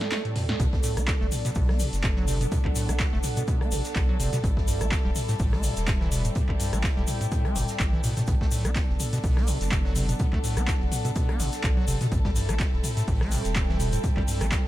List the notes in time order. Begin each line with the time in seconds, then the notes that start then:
Already playing: G3 C4 E4 A4 D5 G5
0.01 A3, snare, closed hi-hat
0.11 A3, snare, clap, closed hi-hat
0.25 A2, closed hi-hat
0.36 B2, snare, closed hi-hat, mid tom, open hi-hat
0.49 A2, snare, closed hi-hat
0.60 B1 B2 F#3 B3 D4 A4, kick, closed hi-hat, shaker
0.73 kick, snare
0.83 A2, closed hi-hat, open hi-hat, shaker
0.97 B1 D4, cross-stick, closed hi-hat, shaker
1.08 kick, snare, clap, closed hi-hat, shaker
1.21 F#1 A3, snare
1.32 closed hi-hat, open hi-hat, mid tom, shaker
1.45 B2, snare, closed hi-hat, shaker
1.55 B1 B2, kick, closed hi-hat, open hi-hat, shaker
1.69 B3, cross-stick, snare
1.79 B2, closed hi-hat, open hi-hat, shaker
1.93 F#1, snare, closed hi-hat, shaker
2.03 B2, kick, snare, clap, closed hi-hat, shaker
2.13 F#5, snare
2.17 F#3
2.28 C3, closed hi-hat, open hi-hat, shaker
2.41 B2, closed hi-hat, shaker
2.52 B2, kick, closed hi-hat, shaker
2.65 B1, kick, clap
2.75 A2, closed hi-hat, open hi-hat, shaker
2.89 B1 D4, cross-stick, closed hi-hat, shaker
2.99 kick, snare, clap, closed hi-hat, shaker
3.13 F#1 A3, snare
3.23 closed hi-hat, open hi-hat, mid tom, shaker
3.37 B2, closed hi-hat, shaker
3.48 B2, kick, closed hi-hat, shaker
3.61 B3, cross-stick, closed hi-hat
3.71 A1 B2, closed hi-hat, open hi-hat, shaker
3.84 snare, closed hi-hat, shaker
3.95 B1 B2, kick, snare, clap, closed hi-hat, shaker
4.09 F#3
4.20 F#1 C3, closed hi-hat, open hi-hat, shaker
4.33 B2, snare, closed hi-hat, mid tom, shaker
4.44 A1 A2 G3 C4 E4, kick, closed hi-hat, shaker
4.57 kick, snare
4.68 G2, closed hi-hat, open hi-hat, shaker
4.81 A1 C4, cross-stick, closed hi-hat, shaker
4.92 kick, snare, clap, closed hi-hat, shaker
5.05 E1 G3, snare
5.15 closed hi-hat, open hi-hat, mid tom, shaker
5.29 A2, snare, closed hi-hat, shaker
5.39 A1 A2, kick, closed hi-hat, open hi-hat, shaker
5.53 A3, cross-stick, snare
5.63 A2 G5, closed hi-hat, open hi-hat, shaker
5.77 E1, snare, closed hi-hat, shaker
5.87 A2, kick, snare, clap, closed hi-hat, shaker
6.01 E3, snare
6.12 B2, closed hi-hat, open hi-hat, shaker
6.25 A2, closed hi-hat, shaker
6.35 A2, kick, closed hi-hat, shaker
6.49 A1, kick, clap
6.60 G2, closed hi-hat, open hi-hat, shaker
6.73 A1 C4, cross-stick, closed hi-hat, shaker
6.84 kick, snare, clap, closed hi-hat, shaker
6.96 E1 G3, snare
7.07 closed hi-hat, open hi-hat, mid tom, shaker
7.21 A2, closed hi-hat, shaker
7.32 A2, kick, closed hi-hat, shaker
7.45 A3, cross-stick, closed hi-hat
7.55 G1 A2, closed hi-hat, open hi-hat, mid tom, shaker
7.68 snare, closed hi-hat, shaker
7.79 A1 A2, kick, snare, clap, closed hi-hat, shaker
7.93 E3
8.04 A2 B2, closed hi-hat, open hi-hat, shaker
8.17 A2, snare, closed hi-hat, mid tom, shaker
8.27 B1 B2 F#3 B3 D4 A4, kick, closed hi-hat, shaker
8.41 A3, kick, snare
8.51 A2, closed hi-hat, open hi-hat, shaker
8.65 B1 D4, cross-stick, closed hi-hat, shaker
8.76 kick, snare, clap, closed hi-hat, shaker
8.89 F#1, snare
9.00 closed hi-hat, open hi-hat, mid tom, shaker
9.13 B2, snare, closed hi-hat, shaker
9.24 B1 B2, kick, closed hi-hat, open hi-hat, shaker
9.37 B3, cross-stick, snare
9.47 B2, closed hi-hat, open hi-hat, shaker
9.53 F#5
9.61 F#1, snare, closed hi-hat, shaker
9.71 B2, kick, snare, clap, closed hi-hat, shaker
9.85 F#3, snare
9.95 C3, closed hi-hat, open hi-hat, shaker
10.09 B2, closed hi-hat, shaker
10.19 B2, kick, closed hi-hat, shaker
10.33 B1 A3, kick, clap
10.44 A2, closed hi-hat, open hi-hat, shaker
10.57 B1 D4, cross-stick, closed hi-hat, shaker
10.67 kick, snare, clap, closed hi-hat, shaker
10.81 F#1, snare
10.92 closed hi-hat, open hi-hat, mid tom, shaker
11.05 B2, closed hi-hat, shaker
11.15 B2, kick, closed hi-hat, shaker
11.29 B3, cross-stick, closed hi-hat
11.40 A1 B2, closed hi-hat, open hi-hat, shaker
11.52 snare, closed hi-hat, shaker
11.64 B1 B2, kick, snare, clap, closed hi-hat, shaker
11.77 F#3
11.88 F#1 C3, closed hi-hat, open hi-hat, shaker
12.01 B2, snare, closed hi-hat, mid tom, shaker
12.12 A1 A2 G3 C4 E4, kick, closed hi-hat, shaker
12.25 G3, kick, snare
12.36 G2, closed hi-hat, open hi-hat, shaker
12.44 G5
12.49 A1 C4, cross-stick, closed hi-hat, shaker
12.59 kick, snare, clap, closed hi-hat, shaker
12.73 E1, snare
12.84 closed hi-hat, open hi-hat, mid tom, shaker
12.97 A2, snare, closed hi-hat, shaker
13.08 A1 A2, kick, closed hi-hat, open hi-hat, shaker
13.21 A3, cross-stick, snare
13.31 A2, closed hi-hat, open hi-hat, shaker
13.45 E1, snare, closed hi-hat, shaker
13.55 A2, kick, snare, clap, closed hi-hat, shaker
13.69 E3, snare
13.80 B2, closed hi-hat, open hi-hat, shaker
13.92 A2, closed hi-hat, shaker
14.04 A2, kick, closed hi-hat, shaker
14.17 A1 G3, kick, clap
14.28 G2, closed hi-hat, open hi-hat, shaker
14.41 A1 C4, cross-stick, closed hi-hat, shaker
14.52 kick, snare, clap, closed hi-hat, shaker